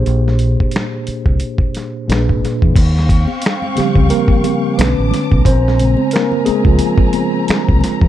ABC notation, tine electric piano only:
X:1
M:4/4
L:1/16
Q:"Swing 16ths" 1/4=89
K:Bbdor
V:1 name="Tine electric piano"
[B,,B,=DGAc]12 [B,,B,DA_c]4 | z6 G2 [B,B]4 [=B,=B]4 | [Cc]4 [B,B]2 [A,A] [F,F]6 z3 |]
V:2 name="Tine electric piano" clef=bass
z16 | z6 [D,F,G,C]6 [=D,=A,^C]4 | z2 [D,A,C]12- [D,A,C]2 |]